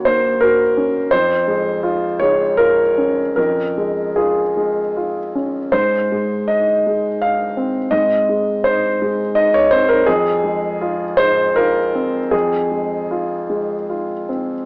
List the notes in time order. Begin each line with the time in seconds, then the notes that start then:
Already playing: D#2 A#3 C#4 F#4 C#5
0.05 A#3 C5
0.41 F#4 A#4
0.77 C#4
1.11 F2 C5
1.48 G#3
1.83 F4
2.20 G#3 C#5
2.57 F4 A#4
2.98 C#4
3.36 F2 A#4
3.78 G#3
4.16 F4 G#4
4.57 G#3
4.97 F4
5.35 C#4
5.72 G#2 C5
6.12 G#3
6.47 D#4 D#5
6.87 G#3
7.22 D#4 F5
7.57 C4
7.91 G#2 D#5
8.29 G#3
8.64 D#4 C5
9.02 G#3
9.35 D#4 D#5
9.54 C#5
9.71 C4 C5
9.89 A#4
10.06 F2 G#4
10.44 G#3
10.81 F4
11.17 G#3 C5
11.56 F4 A#4
11.95 C4
12.31 F2 G#4
12.71 G#3
13.11 F4
13.50 G#3
13.89 F4
14.29 C4